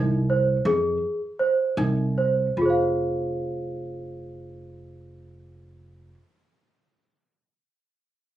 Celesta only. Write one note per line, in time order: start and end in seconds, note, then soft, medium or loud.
0.00 0.20 D#4 medium
0.30 0.55 C5 medium
0.66 1.19 G#4 medium
1.39 1.67 C5 medium
1.78 2.06 D#4 medium
2.18 2.46 C5 medium
2.58 6.14 F4 soft
2.62 6.18 G#4 soft
2.66 6.23 C5 soft
2.70 6.27 F5 soft